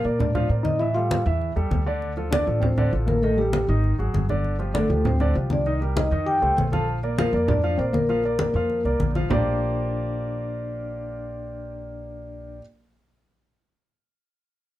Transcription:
Already playing: A#3 A#4
0.04 A#2 A#3 A#4 D5, high conga
0.19 D4 D5, high conga, low conga
0.35 F3 F4 F5, high conga, low conga
0.49 A2 C4 A#4 D5, high conga
0.63 D#4 D#5, high conga
0.79 E3 E4 E5, high conga
0.94 G3 F4 G4 A4 F5, high conga
1.11 high conga
1.26 E2 E3 E4 E5
1.42 high conga
1.56 E2 G3 G4 A4, high conga
1.71 D2, high conga
1.86 D3 D4 D5
2.02 high conga
2.17 F3 F4 A4, high conga
2.31 D3 D4 D5, high conga
2.47 A1 F3 F4 A4, high conga
2.61 C4 C5, high conga, low conga
2.78 D3 D4 D5, high conga, low conga
2.93 A1 F3 F4 A4, high conga
3.07 A#3 A#4, high conga
3.22 D#3 A3 D#4 A4 D#5, high conga
3.37 G3 G4 A4, high conga
3.53 high conga
3.68 G#1 D#3 D#4 D#5
3.84 high conga
3.99 G#1 F#3 F#4 G#4, high conga
4.14 G1, high conga
4.29 D3 D4 D5, high conga
4.44 high conga
4.59 F3 F4 G4, high conga
4.74 D3 A3 D4 A4 D5, high conga
4.89 D2 F3 F4 G4, high conga
5.05 C4 C5, high conga, low conga
5.20 D3 D4 D5, high conga, low conga
5.35 C2 F3 F4 G4, high conga
5.50 D4 D5, high conga
5.66 D#3 D#4 D#5, high conga
5.81 G3 G4 A#4, high conga
5.96 D#4 D#5, high conga
6.11 F2 D#3 D#4 D#5
6.26 G4 G5, high conga
6.41 C2 A3 A4 C5, high conga
6.57 A#1, high conga
6.72 F3 F4 A4 F5 A5, high conga
6.88 high conga
7.03 A#3 A#4 D5, high conga
7.18 F3 A#3 F4 A#4 F5, high conga
7.33 F2 A#3 A#4 D5, high conga
7.48 D4 D5, high conga, low conga
7.63 F3 F4 F5, high conga
7.78 A#1 A#3 C4 A#4 C5 D5, high conga
7.93 A#3 A#4, high conga
8.09 F3 F4 F5, high conga
8.24 A#3 A#4 D5, high conga
8.39 high conga
8.54 F2 F3 F4 F5
8.70 high conga
8.84 C2 A#3 A#4 D5, high conga
8.99 A#1, high conga
9.15 F3 F4 F5, high conga
9.29 A#1 A#3 D4 F4 G4 A#4 C5 D5, low conga

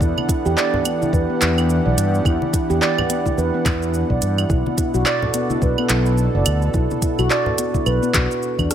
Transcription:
Already playing: B3 D4 A4 F#5
0.00 E2 E3 E4, kick, shaker
0.17 high conga, claves
0.29 E4, kick, closed hi-hat, shaker
0.46 E2 G4, shaker
0.57 D5, clap, shaker
0.74 G4, low conga
0.85 B3, closed hi-hat, claves, shaker
1.02 E4, high conga, shaker
1.13 E2 B4, kick, shaker
1.30 B3
1.41 E2 E4, clap, closed hi-hat, shaker
1.58 claves, shaker
1.70 shaker
1.85 B1 D5
1.97 G2, closed hi-hat, shaker
2.14 shaker
2.25 E2 E4, kick, claves, shaker
2.42 high conga
2.53 E4, kick, closed hi-hat, shaker
2.70 E2 G4, shaker
2.82 D5, clap, shaker
2.98 low conga, claves
3.10 B3, closed hi-hat, shaker
3.25 E4, kick, high bongo, high conga, shaker
3.38 E2 B4, shaker
3.54 B3
3.65 E2 E4, kick, clap, closed hi-hat, low conga, claves, shaker
3.82 shaker
3.94 shaker
4.10 B1 D5, kick
4.22 G2, closed hi-hat, shaker
4.38 claves, shaker
4.50 B1 B2 E4, kick, shaker
4.66 high conga
4.78 E4, kick, closed hi-hat, shaker
4.84 A4
4.94 B1 F#4, shaker
5.06 D5, clap, claves, shaker
5.22 low conga
5.34 B3, closed hi-hat, shaker
5.50 E4, high conga, shaker
5.62 B1 B4, kick, shaker
5.78 B3, claves
5.89 B1 E4, clap, closed hi-hat, shaker
6.06 shaker
6.18 shaker
6.34 F#1 D5
6.46 D2, closed hi-hat, claves, shaker
6.62 shaker
6.74 B1 E4, kick, shaker
6.91 high conga, shaker
7.02 E4, kick, closed hi-hat, high conga, shaker
7.19 B1 F#4, claves, shaker
7.30 D5, clap, shaker
7.46 low conga
7.58 B3, closed hi-hat, shaker
7.74 E4, kick, high bongo, high conga, shaker
7.86 B1 B4, claves, shaker
8.03 B3, shaker
8.14 B1 F#4, kick, clap, closed hi-hat, high bongo, low conga, shaker
8.31 shaker
8.43 shaker
8.59 E2 D4, kick, claves, shaker
8.71 cross-stick, closed hi-hat, shaker

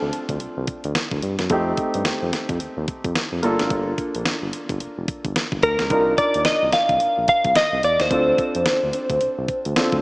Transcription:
Already playing: A3 C4 D4 F4
0.02 D2
0.13 closed hi-hat
0.29 D2, kick, closed hi-hat
0.40 C2, closed hi-hat
0.57 C2
0.67 kick, closed hi-hat
0.84 D2, closed hi-hat
0.95 snare, closed hi-hat
1.11 D2, kick
1.22 G2, closed hi-hat
1.39 F#2, snare, closed hi-hat
1.50 F2 A3 C4 D#4 G4, kick, closed hi-hat
1.77 kick, closed hi-hat
1.94 G2, closed hi-hat
2.05 F2, snare, closed hi-hat
2.22 F2
2.33 snare, closed hi-hat
2.49 F2, kick, closed hi-hat
2.60 closed hi-hat
2.77 D#2
2.88 kick, closed hi-hat
3.04 F2, kick, closed hi-hat
3.15 snare, closed hi-hat
3.32 F2
3.43 G1 A#3 D4 F4 A4, closed hi-hat
3.59 G#1, snare, closed hi-hat
3.70 G1, kick, closed hi-hat
3.98 kick, closed hi-hat
4.15 A#1, closed hi-hat
4.25 G1, snare, closed hi-hat
4.42 G1
4.53 closed hi-hat
4.69 G1, kick, closed hi-hat
4.80 closed hi-hat
4.98 F1
5.08 kick, closed hi-hat
5.25 G1, kick, closed hi-hat
5.36 snare, closed hi-hat
5.52 G1, kick
5.63 D2 A#4, kick, closed hi-hat
5.79 C#2, snare, closed hi-hat
5.90 C2 D4 D#4 F4 A#4, kick, closed hi-hat
6.18 D5, kick, closed hi-hat
6.34 D#2, closed hi-hat
6.45 C2 D#5, snare, closed hi-hat
6.63 C2
6.72 F5, snare, closed hi-hat
6.89 C2, kick, closed hi-hat
7.00 A#1, closed hi-hat
7.18 A#1
7.28 F5, kick, closed hi-hat
7.44 C2, kick, closed hi-hat
7.55 D#5, snare, closed hi-hat
7.73 C2
7.83 E2 D5, closed hi-hat
8.00 D#2 C5, snare, closed hi-hat
8.10 D2 C4 D4 F4 A4, kick, closed hi-hat
8.38 kick, closed hi-hat
8.55 F2, closed hi-hat
8.66 D2, snare, closed hi-hat
8.83 D2
8.93 closed hi-hat
9.10 D2, kick, closed hi-hat
9.21 closed hi-hat
9.38 C2
9.48 kick, closed hi-hat
9.65 D2, closed hi-hat
9.76 C4 D4 F4 A4, snare, closed hi-hat
9.92 D2, kick

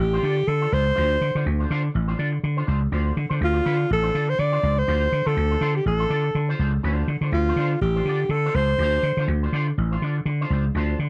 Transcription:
0.00 A1 G4, muted clean electric guitar stroke
0.13 D4 F4 C5
0.23 D3 D4 F4 D5
0.37 muted clean electric guitar stroke
0.48 D3 A4, muted clean electric guitar stroke
0.61 D4 F4 C5
0.72 C#2 D4 F4 C5
0.85 muted clean electric guitar stroke
0.95 D2 D4 F4 C5
1.21 D3, muted clean electric guitar stroke
1.35 D3 D4 F4 C5
1.46 D2, muted clean electric guitar stroke
1.59 D4 F4 C5
1.70 D3 D4 F4 C5
1.84 muted clean electric guitar stroke
1.94 A1, muted clean electric guitar stroke
2.08 D4 F4 C5
2.18 D3 D4 F4 D5
2.33 muted clean electric guitar stroke
2.44 D3, muted clean electric guitar stroke
2.57 D4 F4 C5
2.67 C#2 D4 F4 C5
2.81 muted clean electric guitar stroke
2.92 D2 D4 F4 C5
3.17 D3, muted clean electric guitar stroke
3.30 D3 D4 F4 C5
3.41 D2 F4, muted clean electric guitar stroke
3.53 D4 F4 C5
3.65 D3 D4 F4 C5
3.79 muted clean electric guitar stroke
3.89 A1 A4, muted clean electric guitar stroke
4.03 D4 F4 C5
4.14 D3 D4 F4 D5
4.28 C5, muted clean electric guitar stroke
4.39 D3 D5, muted clean electric guitar stroke
4.52 D4 F4 C5
4.62 C#2 D4 F4 C5
4.77 C5, muted clean electric guitar stroke
4.87 D2 D4 F4 C5
5.12 D3, muted clean electric guitar stroke
5.25 D3 D4 F4 A4 C5
5.36 D2, muted clean electric guitar stroke
5.51 D4 F4 C5
5.61 D3 D4 F4 C5
5.75 G4, muted clean electric guitar stroke
5.86 A1 A4, muted clean electric guitar stroke
5.99 D4 F4 C5
6.09 D3 D4 F4 D5
6.24 muted clean electric guitar stroke
6.35 D3, muted clean electric guitar stroke
6.49 D4 F4 C5
6.59 C#2 D4 F4 C5
6.73 muted clean electric guitar stroke
6.83 D2 D4 F4 C5
7.08 D3, muted clean electric guitar stroke
7.21 D3 D4 F4 C5
7.32 D2 F4, muted clean electric guitar stroke
7.49 D4 F4 C5
7.56 D3 D4 F4 C5
7.73 muted clean electric guitar stroke
7.81 A1 G4, muted clean electric guitar stroke
7.96 D4 F4 C5
8.05 D3 D4 F4
8.09 D5
8.22 muted clean electric guitar stroke
8.29 D3 A4, muted clean electric guitar stroke
8.46 D4 F4 C5
8.54 C#2 D4 F4 C5
8.70 muted clean electric guitar stroke
8.78 D2 D4 F4 C5
9.03 D3, muted clean electric guitar stroke
9.17 D3 D4 F4 C5
9.28 D2, muted clean electric guitar stroke
9.43 D4 F4 C5
9.53 D3 D4 F4 C5
9.68 muted clean electric guitar stroke
9.78 A1, muted clean electric guitar stroke
9.92 D4 F4 C5
10.02 D3 D4 F4 D5
10.18 muted clean electric guitar stroke
10.26 D3, muted clean electric guitar stroke
10.41 D4 F4 C5
10.50 C#2 D4 F4 C5
10.66 muted clean electric guitar stroke
10.75 D2 D4 F4 C5
10.99 D3, muted clean electric guitar stroke

